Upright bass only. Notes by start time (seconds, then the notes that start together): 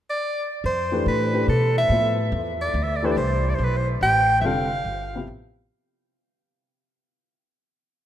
0.64 F2
1.06 A2
1.48 B2
1.90 A2
2.32 E2
2.74 D2
3.17 C2
3.58 B1
4.01 A1
4.42 F1
4.84 G1
5.27 A1